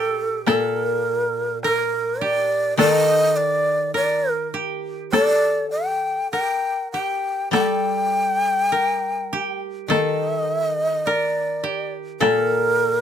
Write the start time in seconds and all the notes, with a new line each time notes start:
Already playing: A#2 G4 A4 A#4
0.46 A#2 A4 A#4, taiko rim, taiko high
1.63 A#4, taiko rim
2.20 G4 D5
2.77 D#3 A4 D#5, taiko rim, taiko high
3.36 D5
3.94 A#4 D5
4.32 A#4
4.54 G4
5.12 A4 D5, taiko rim, taiko high
5.71 G5
6.32 A#4 G5, taiko rim
6.92 G4 G5
7.51 G3 A4 G5, taiko rim, taiko high
8.72 A#4
9.33 G4
9.88 D#3 A4 D#5, taiko rim, taiko high
11.06 A#4 D5, taiko rim
11.64 G4
12.20 A#2 A4 A#4, taiko rim, taiko high